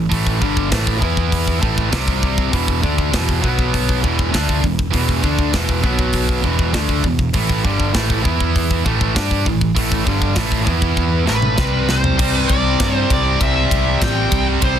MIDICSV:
0, 0, Header, 1, 6, 480
1, 0, Start_track
1, 0, Tempo, 604839
1, 87, Time_signature, 4, 2, 24, 8
1, 11740, End_track
2, 0, Start_track
2, 0, Title_t, "Lead electric guitar"
2, 0, Program_c, 0, 29
2, 8964, Note_on_c, 0, 71, 93
2, 9451, Note_off_c, 0, 71, 0
2, 9454, Note_on_c, 0, 72, 91
2, 9804, Note_off_c, 0, 72, 0
2, 9804, Note_on_c, 0, 71, 91
2, 9900, Note_on_c, 0, 74, 94
2, 9940, Note_off_c, 0, 71, 0
2, 10289, Note_off_c, 0, 74, 0
2, 10289, Note_on_c, 0, 72, 94
2, 10401, Note_off_c, 0, 72, 0
2, 10411, Note_on_c, 0, 74, 102
2, 10628, Note_off_c, 0, 74, 0
2, 10651, Note_on_c, 0, 76, 102
2, 11095, Note_off_c, 0, 76, 0
2, 11142, Note_on_c, 0, 79, 112
2, 11468, Note_off_c, 0, 79, 0
2, 11618, Note_on_c, 0, 72, 107
2, 11740, Note_off_c, 0, 72, 0
2, 11740, End_track
3, 0, Start_track
3, 0, Title_t, "Distorted electric guitar"
3, 0, Program_c, 1, 30
3, 10631, Note_on_c, 1, 48, 86
3, 10640, Note_on_c, 1, 55, 89
3, 10650, Note_on_c, 1, 60, 88
3, 11584, Note_off_c, 1, 48, 0
3, 11588, Note_off_c, 1, 55, 0
3, 11593, Note_off_c, 1, 60, 0
3, 11740, End_track
4, 0, Start_track
4, 0, Title_t, "Distorted electric guitar"
4, 0, Program_c, 2, 30
4, 87, Note_on_c, 2, 45, 86
4, 88, Note_on_c, 2, 52, 91
4, 93, Note_on_c, 2, 57, 95
4, 319, Note_off_c, 2, 45, 0
4, 319, Note_on_c, 2, 43, 93
4, 320, Note_off_c, 2, 52, 0
4, 322, Note_off_c, 2, 57, 0
4, 326, Note_on_c, 2, 55, 96
4, 327, Note_on_c, 2, 50, 86
4, 552, Note_off_c, 2, 50, 0
4, 555, Note_off_c, 2, 43, 0
4, 555, Note_on_c, 2, 45, 82
4, 558, Note_off_c, 2, 55, 0
4, 562, Note_on_c, 2, 52, 88
4, 565, Note_on_c, 2, 57, 92
4, 801, Note_off_c, 2, 45, 0
4, 801, Note_off_c, 2, 52, 0
4, 801, Note_on_c, 2, 52, 71
4, 811, Note_on_c, 2, 59, 72
4, 815, Note_off_c, 2, 57, 0
4, 815, Note_on_c, 2, 64, 78
4, 1263, Note_off_c, 2, 52, 0
4, 1269, Note_off_c, 2, 59, 0
4, 1270, Note_on_c, 2, 45, 76
4, 1272, Note_off_c, 2, 64, 0
4, 1272, Note_on_c, 2, 52, 93
4, 1275, Note_on_c, 2, 57, 77
4, 1503, Note_off_c, 2, 45, 0
4, 1507, Note_on_c, 2, 48, 80
4, 1510, Note_off_c, 2, 52, 0
4, 1512, Note_off_c, 2, 57, 0
4, 1515, Note_on_c, 2, 55, 86
4, 1520, Note_on_c, 2, 60, 85
4, 1986, Note_off_c, 2, 48, 0
4, 1990, Note_on_c, 2, 40, 79
4, 1990, Note_on_c, 2, 47, 92
4, 1991, Note_off_c, 2, 55, 0
4, 1993, Note_off_c, 2, 60, 0
4, 2002, Note_on_c, 2, 52, 90
4, 2228, Note_off_c, 2, 40, 0
4, 2228, Note_off_c, 2, 47, 0
4, 2234, Note_off_c, 2, 52, 0
4, 2237, Note_on_c, 2, 50, 86
4, 2238, Note_on_c, 2, 62, 98
4, 2240, Note_on_c, 2, 57, 86
4, 2470, Note_on_c, 2, 40, 89
4, 2471, Note_off_c, 2, 50, 0
4, 2471, Note_off_c, 2, 62, 0
4, 2472, Note_off_c, 2, 57, 0
4, 2478, Note_on_c, 2, 47, 87
4, 2479, Note_on_c, 2, 52, 97
4, 2698, Note_off_c, 2, 47, 0
4, 2707, Note_off_c, 2, 40, 0
4, 2708, Note_on_c, 2, 47, 76
4, 2710, Note_off_c, 2, 52, 0
4, 2713, Note_on_c, 2, 54, 75
4, 2714, Note_on_c, 2, 59, 84
4, 3185, Note_off_c, 2, 47, 0
4, 3187, Note_off_c, 2, 54, 0
4, 3188, Note_off_c, 2, 59, 0
4, 3196, Note_on_c, 2, 40, 77
4, 3200, Note_on_c, 2, 47, 85
4, 3208, Note_on_c, 2, 52, 88
4, 3424, Note_off_c, 2, 47, 0
4, 3427, Note_off_c, 2, 52, 0
4, 3427, Note_on_c, 2, 50, 92
4, 3429, Note_off_c, 2, 40, 0
4, 3430, Note_on_c, 2, 57, 89
4, 3439, Note_on_c, 2, 62, 93
4, 3664, Note_off_c, 2, 50, 0
4, 3665, Note_off_c, 2, 57, 0
4, 3670, Note_off_c, 2, 62, 0
4, 3682, Note_on_c, 2, 40, 62
4, 3685, Note_on_c, 2, 47, 69
4, 3870, Note_off_c, 2, 40, 0
4, 3872, Note_off_c, 2, 47, 0
4, 3912, Note_on_c, 2, 40, 91
4, 3918, Note_on_c, 2, 47, 93
4, 3929, Note_on_c, 2, 52, 95
4, 4145, Note_off_c, 2, 40, 0
4, 4148, Note_off_c, 2, 47, 0
4, 4154, Note_off_c, 2, 52, 0
4, 4155, Note_on_c, 2, 50, 92
4, 4163, Note_on_c, 2, 57, 98
4, 4166, Note_on_c, 2, 62, 85
4, 4387, Note_off_c, 2, 50, 0
4, 4390, Note_off_c, 2, 57, 0
4, 4392, Note_off_c, 2, 62, 0
4, 4400, Note_on_c, 2, 40, 80
4, 4407, Note_on_c, 2, 47, 93
4, 4408, Note_on_c, 2, 52, 90
4, 4621, Note_off_c, 2, 47, 0
4, 4629, Note_off_c, 2, 40, 0
4, 4631, Note_on_c, 2, 47, 72
4, 4633, Note_off_c, 2, 52, 0
4, 4637, Note_on_c, 2, 54, 78
4, 4641, Note_on_c, 2, 59, 81
4, 5103, Note_off_c, 2, 47, 0
4, 5103, Note_on_c, 2, 40, 81
4, 5106, Note_off_c, 2, 54, 0
4, 5108, Note_off_c, 2, 59, 0
4, 5115, Note_on_c, 2, 47, 82
4, 5118, Note_on_c, 2, 52, 88
4, 5337, Note_off_c, 2, 47, 0
4, 5339, Note_off_c, 2, 40, 0
4, 5340, Note_on_c, 2, 50, 85
4, 5344, Note_off_c, 2, 52, 0
4, 5347, Note_on_c, 2, 57, 94
4, 5352, Note_on_c, 2, 62, 93
4, 5578, Note_off_c, 2, 50, 0
4, 5581, Note_off_c, 2, 57, 0
4, 5584, Note_off_c, 2, 62, 0
4, 5587, Note_on_c, 2, 47, 73
4, 5589, Note_on_c, 2, 40, 61
4, 5780, Note_off_c, 2, 47, 0
4, 5781, Note_off_c, 2, 40, 0
4, 5817, Note_on_c, 2, 45, 83
4, 5820, Note_on_c, 2, 52, 104
4, 5827, Note_on_c, 2, 57, 105
4, 6056, Note_off_c, 2, 45, 0
4, 6057, Note_off_c, 2, 52, 0
4, 6061, Note_off_c, 2, 57, 0
4, 6063, Note_on_c, 2, 43, 96
4, 6067, Note_on_c, 2, 50, 86
4, 6073, Note_on_c, 2, 55, 107
4, 6294, Note_off_c, 2, 50, 0
4, 6298, Note_on_c, 2, 45, 80
4, 6299, Note_off_c, 2, 43, 0
4, 6299, Note_off_c, 2, 55, 0
4, 6302, Note_on_c, 2, 52, 87
4, 6306, Note_on_c, 2, 57, 93
4, 6532, Note_off_c, 2, 52, 0
4, 6536, Note_off_c, 2, 45, 0
4, 6540, Note_off_c, 2, 57, 0
4, 6541, Note_on_c, 2, 52, 84
4, 6545, Note_on_c, 2, 59, 77
4, 6551, Note_on_c, 2, 64, 85
4, 7016, Note_off_c, 2, 52, 0
4, 7020, Note_off_c, 2, 59, 0
4, 7021, Note_on_c, 2, 45, 78
4, 7023, Note_off_c, 2, 64, 0
4, 7025, Note_on_c, 2, 52, 83
4, 7034, Note_on_c, 2, 57, 91
4, 7258, Note_off_c, 2, 45, 0
4, 7260, Note_off_c, 2, 52, 0
4, 7263, Note_off_c, 2, 57, 0
4, 7264, Note_on_c, 2, 55, 91
4, 7266, Note_on_c, 2, 62, 87
4, 7274, Note_on_c, 2, 67, 93
4, 7499, Note_off_c, 2, 55, 0
4, 7501, Note_off_c, 2, 62, 0
4, 7505, Note_off_c, 2, 67, 0
4, 7511, Note_on_c, 2, 45, 67
4, 7516, Note_on_c, 2, 52, 63
4, 7703, Note_off_c, 2, 45, 0
4, 7705, Note_off_c, 2, 52, 0
4, 7742, Note_on_c, 2, 45, 85
4, 7746, Note_on_c, 2, 52, 87
4, 7756, Note_on_c, 2, 57, 105
4, 7979, Note_off_c, 2, 45, 0
4, 7981, Note_off_c, 2, 52, 0
4, 7986, Note_off_c, 2, 57, 0
4, 7986, Note_on_c, 2, 43, 90
4, 7989, Note_on_c, 2, 50, 94
4, 7998, Note_on_c, 2, 55, 92
4, 8218, Note_off_c, 2, 50, 0
4, 8221, Note_off_c, 2, 43, 0
4, 8221, Note_on_c, 2, 45, 87
4, 8225, Note_off_c, 2, 55, 0
4, 8228, Note_on_c, 2, 52, 94
4, 8234, Note_on_c, 2, 57, 102
4, 8462, Note_off_c, 2, 45, 0
4, 8462, Note_off_c, 2, 52, 0
4, 8462, Note_on_c, 2, 52, 74
4, 8469, Note_on_c, 2, 59, 82
4, 8474, Note_off_c, 2, 57, 0
4, 8474, Note_on_c, 2, 64, 81
4, 8940, Note_off_c, 2, 52, 0
4, 8943, Note_on_c, 2, 45, 86
4, 8944, Note_off_c, 2, 59, 0
4, 8946, Note_off_c, 2, 64, 0
4, 8949, Note_on_c, 2, 52, 87
4, 8956, Note_on_c, 2, 57, 80
4, 9189, Note_off_c, 2, 45, 0
4, 9189, Note_on_c, 2, 48, 84
4, 9198, Note_off_c, 2, 52, 0
4, 9198, Note_on_c, 2, 55, 88
4, 9201, Note_off_c, 2, 57, 0
4, 9201, Note_on_c, 2, 60, 91
4, 9650, Note_off_c, 2, 48, 0
4, 9659, Note_on_c, 2, 48, 89
4, 9665, Note_off_c, 2, 55, 0
4, 9671, Note_off_c, 2, 60, 0
4, 9674, Note_on_c, 2, 55, 98
4, 9683, Note_on_c, 2, 60, 99
4, 11580, Note_off_c, 2, 48, 0
4, 11587, Note_off_c, 2, 55, 0
4, 11592, Note_off_c, 2, 60, 0
4, 11592, Note_on_c, 2, 48, 91
4, 11606, Note_on_c, 2, 55, 95
4, 11616, Note_on_c, 2, 60, 96
4, 11740, Note_off_c, 2, 48, 0
4, 11740, Note_off_c, 2, 55, 0
4, 11740, Note_off_c, 2, 60, 0
4, 11740, End_track
5, 0, Start_track
5, 0, Title_t, "Picked electric bass"
5, 0, Program_c, 3, 34
5, 88, Note_on_c, 3, 33, 84
5, 310, Note_off_c, 3, 33, 0
5, 331, Note_on_c, 3, 31, 88
5, 552, Note_off_c, 3, 31, 0
5, 568, Note_on_c, 3, 33, 88
5, 790, Note_off_c, 3, 33, 0
5, 811, Note_on_c, 3, 40, 86
5, 1255, Note_off_c, 3, 40, 0
5, 1292, Note_on_c, 3, 33, 79
5, 1511, Note_off_c, 3, 33, 0
5, 1528, Note_on_c, 3, 36, 94
5, 1973, Note_off_c, 3, 36, 0
5, 2011, Note_on_c, 3, 28, 84
5, 2229, Note_off_c, 3, 28, 0
5, 2250, Note_on_c, 3, 38, 84
5, 2468, Note_off_c, 3, 38, 0
5, 2492, Note_on_c, 3, 28, 86
5, 2709, Note_off_c, 3, 28, 0
5, 2734, Note_on_c, 3, 35, 91
5, 3173, Note_off_c, 3, 35, 0
5, 3210, Note_on_c, 3, 28, 87
5, 3427, Note_off_c, 3, 28, 0
5, 3443, Note_on_c, 3, 38, 89
5, 3663, Note_off_c, 3, 38, 0
5, 3684, Note_on_c, 3, 28, 74
5, 3903, Note_off_c, 3, 28, 0
5, 3923, Note_on_c, 3, 28, 82
5, 4142, Note_off_c, 3, 28, 0
5, 4159, Note_on_c, 3, 38, 84
5, 4379, Note_off_c, 3, 38, 0
5, 4395, Note_on_c, 3, 28, 90
5, 4617, Note_off_c, 3, 28, 0
5, 4635, Note_on_c, 3, 35, 88
5, 5081, Note_off_c, 3, 35, 0
5, 5108, Note_on_c, 3, 28, 91
5, 5332, Note_off_c, 3, 28, 0
5, 5347, Note_on_c, 3, 38, 88
5, 5571, Note_off_c, 3, 38, 0
5, 5590, Note_on_c, 3, 28, 72
5, 5813, Note_off_c, 3, 28, 0
5, 5829, Note_on_c, 3, 33, 91
5, 6052, Note_off_c, 3, 33, 0
5, 6071, Note_on_c, 3, 31, 87
5, 6293, Note_off_c, 3, 31, 0
5, 6307, Note_on_c, 3, 33, 89
5, 6531, Note_off_c, 3, 33, 0
5, 6553, Note_on_c, 3, 40, 90
5, 6999, Note_off_c, 3, 40, 0
5, 7031, Note_on_c, 3, 33, 82
5, 7253, Note_off_c, 3, 33, 0
5, 7272, Note_on_c, 3, 43, 95
5, 7494, Note_off_c, 3, 43, 0
5, 7508, Note_on_c, 3, 33, 74
5, 7732, Note_off_c, 3, 33, 0
5, 7751, Note_on_c, 3, 33, 89
5, 7974, Note_off_c, 3, 33, 0
5, 7993, Note_on_c, 3, 31, 83
5, 8215, Note_off_c, 3, 31, 0
5, 8230, Note_on_c, 3, 33, 86
5, 8454, Note_off_c, 3, 33, 0
5, 8472, Note_on_c, 3, 40, 90
5, 8921, Note_off_c, 3, 40, 0
5, 8957, Note_on_c, 3, 33, 84
5, 9178, Note_off_c, 3, 33, 0
5, 9191, Note_on_c, 3, 36, 89
5, 9642, Note_off_c, 3, 36, 0
5, 9679, Note_on_c, 3, 36, 92
5, 9858, Note_off_c, 3, 36, 0
5, 9922, Note_on_c, 3, 36, 89
5, 10100, Note_off_c, 3, 36, 0
5, 10158, Note_on_c, 3, 43, 88
5, 10338, Note_off_c, 3, 43, 0
5, 10402, Note_on_c, 3, 36, 95
5, 10581, Note_off_c, 3, 36, 0
5, 10638, Note_on_c, 3, 36, 97
5, 10819, Note_off_c, 3, 36, 0
5, 10881, Note_on_c, 3, 36, 85
5, 11061, Note_off_c, 3, 36, 0
5, 11126, Note_on_c, 3, 33, 99
5, 11304, Note_off_c, 3, 33, 0
5, 11364, Note_on_c, 3, 36, 85
5, 11543, Note_off_c, 3, 36, 0
5, 11607, Note_on_c, 3, 36, 93
5, 11740, Note_off_c, 3, 36, 0
5, 11740, End_track
6, 0, Start_track
6, 0, Title_t, "Drums"
6, 92, Note_on_c, 9, 36, 81
6, 93, Note_on_c, 9, 46, 54
6, 171, Note_off_c, 9, 36, 0
6, 173, Note_off_c, 9, 46, 0
6, 211, Note_on_c, 9, 36, 80
6, 291, Note_off_c, 9, 36, 0
6, 331, Note_on_c, 9, 36, 75
6, 410, Note_off_c, 9, 36, 0
6, 451, Note_on_c, 9, 36, 73
6, 531, Note_off_c, 9, 36, 0
6, 569, Note_on_c, 9, 46, 52
6, 570, Note_on_c, 9, 36, 79
6, 572, Note_on_c, 9, 38, 96
6, 649, Note_off_c, 9, 36, 0
6, 649, Note_off_c, 9, 46, 0
6, 652, Note_off_c, 9, 38, 0
6, 691, Note_on_c, 9, 36, 76
6, 770, Note_off_c, 9, 36, 0
6, 810, Note_on_c, 9, 36, 80
6, 889, Note_off_c, 9, 36, 0
6, 930, Note_on_c, 9, 36, 79
6, 1009, Note_off_c, 9, 36, 0
6, 1050, Note_on_c, 9, 36, 70
6, 1050, Note_on_c, 9, 46, 51
6, 1130, Note_off_c, 9, 36, 0
6, 1130, Note_off_c, 9, 46, 0
6, 1171, Note_on_c, 9, 36, 77
6, 1250, Note_off_c, 9, 36, 0
6, 1291, Note_on_c, 9, 36, 77
6, 1370, Note_off_c, 9, 36, 0
6, 1411, Note_on_c, 9, 36, 81
6, 1490, Note_off_c, 9, 36, 0
6, 1528, Note_on_c, 9, 46, 53
6, 1529, Note_on_c, 9, 36, 84
6, 1531, Note_on_c, 9, 38, 100
6, 1607, Note_off_c, 9, 46, 0
6, 1608, Note_off_c, 9, 36, 0
6, 1610, Note_off_c, 9, 38, 0
6, 1648, Note_on_c, 9, 36, 83
6, 1728, Note_off_c, 9, 36, 0
6, 1769, Note_on_c, 9, 36, 78
6, 1849, Note_off_c, 9, 36, 0
6, 1888, Note_on_c, 9, 36, 82
6, 1967, Note_off_c, 9, 36, 0
6, 2010, Note_on_c, 9, 36, 82
6, 2010, Note_on_c, 9, 46, 50
6, 2089, Note_off_c, 9, 36, 0
6, 2089, Note_off_c, 9, 46, 0
6, 2128, Note_on_c, 9, 36, 83
6, 2208, Note_off_c, 9, 36, 0
6, 2249, Note_on_c, 9, 36, 80
6, 2329, Note_off_c, 9, 36, 0
6, 2368, Note_on_c, 9, 36, 68
6, 2448, Note_off_c, 9, 36, 0
6, 2488, Note_on_c, 9, 36, 79
6, 2489, Note_on_c, 9, 46, 50
6, 2492, Note_on_c, 9, 38, 97
6, 2568, Note_off_c, 9, 36, 0
6, 2568, Note_off_c, 9, 46, 0
6, 2571, Note_off_c, 9, 38, 0
6, 2609, Note_on_c, 9, 36, 75
6, 2688, Note_off_c, 9, 36, 0
6, 2728, Note_on_c, 9, 36, 75
6, 2807, Note_off_c, 9, 36, 0
6, 2847, Note_on_c, 9, 36, 75
6, 2926, Note_off_c, 9, 36, 0
6, 2968, Note_on_c, 9, 36, 77
6, 2970, Note_on_c, 9, 46, 46
6, 3048, Note_off_c, 9, 36, 0
6, 3049, Note_off_c, 9, 46, 0
6, 3088, Note_on_c, 9, 36, 72
6, 3167, Note_off_c, 9, 36, 0
6, 3206, Note_on_c, 9, 36, 81
6, 3285, Note_off_c, 9, 36, 0
6, 3325, Note_on_c, 9, 36, 81
6, 3405, Note_off_c, 9, 36, 0
6, 3445, Note_on_c, 9, 36, 86
6, 3445, Note_on_c, 9, 46, 55
6, 3449, Note_on_c, 9, 38, 108
6, 3524, Note_off_c, 9, 36, 0
6, 3525, Note_off_c, 9, 46, 0
6, 3528, Note_off_c, 9, 38, 0
6, 3564, Note_on_c, 9, 36, 87
6, 3643, Note_off_c, 9, 36, 0
6, 3681, Note_on_c, 9, 36, 77
6, 3761, Note_off_c, 9, 36, 0
6, 3801, Note_on_c, 9, 36, 80
6, 3881, Note_off_c, 9, 36, 0
6, 3915, Note_on_c, 9, 46, 59
6, 3919, Note_on_c, 9, 36, 77
6, 3994, Note_off_c, 9, 46, 0
6, 3998, Note_off_c, 9, 36, 0
6, 4038, Note_on_c, 9, 36, 77
6, 4117, Note_off_c, 9, 36, 0
6, 4156, Note_on_c, 9, 36, 77
6, 4236, Note_off_c, 9, 36, 0
6, 4274, Note_on_c, 9, 36, 72
6, 4354, Note_off_c, 9, 36, 0
6, 4392, Note_on_c, 9, 46, 59
6, 4395, Note_on_c, 9, 36, 80
6, 4395, Note_on_c, 9, 38, 100
6, 4471, Note_off_c, 9, 46, 0
6, 4474, Note_off_c, 9, 36, 0
6, 4474, Note_off_c, 9, 38, 0
6, 4514, Note_on_c, 9, 36, 82
6, 4593, Note_off_c, 9, 36, 0
6, 4632, Note_on_c, 9, 36, 80
6, 4711, Note_off_c, 9, 36, 0
6, 4751, Note_on_c, 9, 36, 78
6, 4831, Note_off_c, 9, 36, 0
6, 4863, Note_on_c, 9, 46, 52
6, 4870, Note_on_c, 9, 36, 73
6, 4942, Note_off_c, 9, 46, 0
6, 4949, Note_off_c, 9, 36, 0
6, 4991, Note_on_c, 9, 36, 82
6, 5070, Note_off_c, 9, 36, 0
6, 5110, Note_on_c, 9, 36, 75
6, 5189, Note_off_c, 9, 36, 0
6, 5230, Note_on_c, 9, 36, 84
6, 5309, Note_off_c, 9, 36, 0
6, 5349, Note_on_c, 9, 36, 87
6, 5349, Note_on_c, 9, 46, 56
6, 5352, Note_on_c, 9, 38, 104
6, 5428, Note_off_c, 9, 46, 0
6, 5429, Note_off_c, 9, 36, 0
6, 5431, Note_off_c, 9, 38, 0
6, 5468, Note_on_c, 9, 36, 83
6, 5547, Note_off_c, 9, 36, 0
6, 5586, Note_on_c, 9, 36, 80
6, 5666, Note_off_c, 9, 36, 0
6, 5705, Note_on_c, 9, 36, 82
6, 5785, Note_off_c, 9, 36, 0
6, 5821, Note_on_c, 9, 46, 55
6, 5826, Note_on_c, 9, 36, 88
6, 5900, Note_off_c, 9, 46, 0
6, 5905, Note_off_c, 9, 36, 0
6, 5948, Note_on_c, 9, 36, 77
6, 6027, Note_off_c, 9, 36, 0
6, 6068, Note_on_c, 9, 36, 78
6, 6147, Note_off_c, 9, 36, 0
6, 6187, Note_on_c, 9, 36, 75
6, 6266, Note_off_c, 9, 36, 0
6, 6303, Note_on_c, 9, 46, 50
6, 6306, Note_on_c, 9, 38, 97
6, 6307, Note_on_c, 9, 36, 79
6, 6382, Note_off_c, 9, 46, 0
6, 6385, Note_off_c, 9, 38, 0
6, 6386, Note_off_c, 9, 36, 0
6, 6428, Note_on_c, 9, 36, 77
6, 6507, Note_off_c, 9, 36, 0
6, 6549, Note_on_c, 9, 36, 83
6, 6628, Note_off_c, 9, 36, 0
6, 6670, Note_on_c, 9, 36, 77
6, 6749, Note_off_c, 9, 36, 0
6, 6791, Note_on_c, 9, 36, 78
6, 6796, Note_on_c, 9, 46, 47
6, 6871, Note_off_c, 9, 36, 0
6, 6875, Note_off_c, 9, 46, 0
6, 6910, Note_on_c, 9, 36, 83
6, 6989, Note_off_c, 9, 36, 0
6, 7030, Note_on_c, 9, 36, 81
6, 7110, Note_off_c, 9, 36, 0
6, 7150, Note_on_c, 9, 36, 79
6, 7230, Note_off_c, 9, 36, 0
6, 7270, Note_on_c, 9, 36, 90
6, 7271, Note_on_c, 9, 46, 54
6, 7274, Note_on_c, 9, 38, 109
6, 7349, Note_off_c, 9, 36, 0
6, 7350, Note_off_c, 9, 46, 0
6, 7353, Note_off_c, 9, 38, 0
6, 7389, Note_on_c, 9, 36, 82
6, 7468, Note_off_c, 9, 36, 0
6, 7509, Note_on_c, 9, 36, 79
6, 7589, Note_off_c, 9, 36, 0
6, 7629, Note_on_c, 9, 36, 79
6, 7709, Note_off_c, 9, 36, 0
6, 7749, Note_on_c, 9, 36, 82
6, 7750, Note_on_c, 9, 46, 57
6, 7829, Note_off_c, 9, 36, 0
6, 7829, Note_off_c, 9, 46, 0
6, 7870, Note_on_c, 9, 36, 84
6, 7950, Note_off_c, 9, 36, 0
6, 7990, Note_on_c, 9, 36, 78
6, 8069, Note_off_c, 9, 36, 0
6, 8108, Note_on_c, 9, 36, 74
6, 8188, Note_off_c, 9, 36, 0
6, 8219, Note_on_c, 9, 46, 55
6, 8222, Note_on_c, 9, 38, 99
6, 8227, Note_on_c, 9, 36, 82
6, 8299, Note_off_c, 9, 46, 0
6, 8302, Note_off_c, 9, 38, 0
6, 8306, Note_off_c, 9, 36, 0
6, 8347, Note_on_c, 9, 36, 80
6, 8426, Note_off_c, 9, 36, 0
6, 8467, Note_on_c, 9, 36, 77
6, 8546, Note_off_c, 9, 36, 0
6, 8587, Note_on_c, 9, 36, 75
6, 8666, Note_off_c, 9, 36, 0
6, 8706, Note_on_c, 9, 36, 73
6, 8786, Note_off_c, 9, 36, 0
6, 8947, Note_on_c, 9, 38, 70
6, 9026, Note_off_c, 9, 38, 0
6, 9066, Note_on_c, 9, 47, 63
6, 9145, Note_off_c, 9, 47, 0
6, 9188, Note_on_c, 9, 38, 86
6, 9191, Note_on_c, 9, 36, 86
6, 9267, Note_off_c, 9, 38, 0
6, 9270, Note_off_c, 9, 36, 0
6, 9434, Note_on_c, 9, 38, 85
6, 9513, Note_off_c, 9, 38, 0
6, 9555, Note_on_c, 9, 43, 86
6, 9634, Note_off_c, 9, 43, 0
6, 9676, Note_on_c, 9, 36, 115
6, 9677, Note_on_c, 9, 49, 118
6, 9755, Note_off_c, 9, 36, 0
6, 9757, Note_off_c, 9, 49, 0
6, 9914, Note_on_c, 9, 51, 75
6, 9916, Note_on_c, 9, 36, 84
6, 9994, Note_off_c, 9, 51, 0
6, 9996, Note_off_c, 9, 36, 0
6, 10157, Note_on_c, 9, 36, 108
6, 10157, Note_on_c, 9, 51, 101
6, 10160, Note_on_c, 9, 38, 118
6, 10236, Note_off_c, 9, 51, 0
6, 10237, Note_off_c, 9, 36, 0
6, 10239, Note_off_c, 9, 38, 0
6, 10399, Note_on_c, 9, 36, 95
6, 10402, Note_on_c, 9, 51, 81
6, 10479, Note_off_c, 9, 36, 0
6, 10481, Note_off_c, 9, 51, 0
6, 10640, Note_on_c, 9, 36, 105
6, 10641, Note_on_c, 9, 51, 95
6, 10719, Note_off_c, 9, 36, 0
6, 10720, Note_off_c, 9, 51, 0
6, 10883, Note_on_c, 9, 36, 86
6, 10887, Note_on_c, 9, 51, 80
6, 10962, Note_off_c, 9, 36, 0
6, 10966, Note_off_c, 9, 51, 0
6, 11123, Note_on_c, 9, 36, 119
6, 11126, Note_on_c, 9, 51, 103
6, 11129, Note_on_c, 9, 38, 127
6, 11203, Note_off_c, 9, 36, 0
6, 11205, Note_off_c, 9, 51, 0
6, 11208, Note_off_c, 9, 38, 0
6, 11363, Note_on_c, 9, 36, 85
6, 11363, Note_on_c, 9, 51, 79
6, 11442, Note_off_c, 9, 51, 0
6, 11443, Note_off_c, 9, 36, 0
6, 11601, Note_on_c, 9, 51, 106
6, 11604, Note_on_c, 9, 36, 114
6, 11681, Note_off_c, 9, 51, 0
6, 11683, Note_off_c, 9, 36, 0
6, 11740, End_track
0, 0, End_of_file